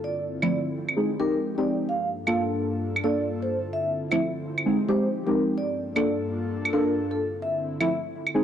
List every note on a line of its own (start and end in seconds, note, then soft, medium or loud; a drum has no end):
0.00 0.95 D3 medium
0.00 1.87 C4 medium
0.00 0.95 E4 medium
0.00 0.94 F4 medium
0.00 0.94 A4 medium
0.04 0.22 D5 medium
0.42 0.49 F3 medium
0.42 0.49 A3 medium
0.42 0.49 C4 medium
0.42 0.49 E4 loud
0.42 0.56 D5 medium
0.42 claves medium
0.89 claves medium
0.97 1.88 F3 medium
0.97 1.10 G#3 medium
0.97 1.88 G#3 medium
0.97 1.10 C4 medium
0.97 1.10 D#4 medium
0.97 1.88 D#4 medium
0.97 1.88 G4 medium
0.97 1.10 G#4 medium
1.20 1.38 G#3 medium
1.20 1.38 C4 medium
1.20 1.38 D#4 medium
1.20 1.38 G4 loud
1.20 1.38 A#4 medium
1.58 1.88 G#3 medium
1.58 1.88 C4 medium
1.58 1.88 D#4 medium
1.58 1.88 G4 medium
1.58 1.71 D5 medium
1.89 3.49 G2 medium
1.89 3.49 A#3 medium
1.89 3.49 D4 medium
1.89 4.63 F4 medium
1.89 4.63 A4 medium
1.89 2.07 F5 medium
2.27 3.02 A#3 medium
2.27 3.02 D4 medium
2.27 3.02 F4 medium
2.27 3.02 A4 medium
2.27 2.40 F5 medium
2.27 claves medium
2.96 claves medium
3.04 3.49 A#3 medium
3.04 3.49 D4 medium
3.04 3.49 F4 medium
3.04 3.49 A4 loud
3.04 3.22 D5 medium
3.42 3.56 C5 medium
3.50 4.64 D3 medium
3.50 5.56 C4 medium
3.50 4.64 E4 medium
3.73 3.91 E5 medium
4.11 4.18 F3 medium
4.11 4.18 A3 medium
4.11 4.18 C4 medium
4.11 4.18 E4 loud
4.11 4.25 E5 medium
4.11 claves medium
4.58 claves medium
4.65 5.57 F3 medium
4.65 5.57 G#3 medium
4.65 4.79 G#3 medium
4.65 4.79 C4 medium
4.65 5.57 D#4 medium
4.65 4.79 D#4 medium
4.65 5.57 G4 medium
4.65 4.79 G#4 medium
4.89 5.07 G#3 medium
4.89 5.07 C4 medium
4.89 5.07 D#4 medium
4.89 5.07 G4 loud
4.89 5.07 C5 medium
5.27 5.57 G#3 medium
5.27 5.57 C4 medium
5.27 5.57 D#4 medium
5.27 5.57 G4 loud
5.27 5.40 A#4 medium
5.58 7.18 G2 medium
5.58 7.18 A#3 medium
5.58 7.18 D4 medium
5.58 8.32 F4 medium
5.58 8.32 A4 medium
5.58 5.76 D5 medium
5.96 6.71 A#3 medium
5.96 6.71 D4 medium
5.96 6.71 F4 medium
5.96 6.71 A4 loud
5.96 6.09 D5 medium
5.96 claves medium
6.65 claves medium
6.73 7.18 A#3 medium
6.73 7.18 D4 medium
6.73 7.18 F4 medium
6.73 7.18 A4 loud
6.73 6.91 A#4 medium
7.11 7.25 A4 medium
7.19 8.33 D3 medium
7.19 8.33 C4 medium
7.19 8.33 E4 medium
7.42 7.60 E5 medium
7.80 7.87 F3 medium
7.80 7.87 A3 medium
7.80 7.87 C4 medium
7.80 7.87 E4 loud
7.80 7.94 E5 medium
7.80 claves medium
8.27 claves medium
8.34 8.44 G#3 medium
8.34 8.44 C4 medium
8.34 8.44 D#4 medium
8.34 8.44 G#4 medium